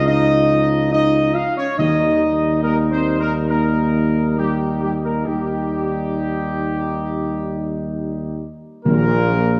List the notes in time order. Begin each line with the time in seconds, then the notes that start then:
Already playing: C#2 F3 D#4
0.07 D#4 D#5
0.92 D#4 D#5
1.34 F4 F5
1.56 C#4 C#5
1.77 D#2 D#3 G3 D#4 D#5
2.62 A#3 A#4
2.92 C4 C5
3.20 A#3 A#4
3.49 A#3 A#4
4.37 G3 G4
4.82 G3 G4
5.04 A#3 A#4
5.26 D#2 G3 D#4 G4
8.85 A#1 A#2 D#3 A#3 A#4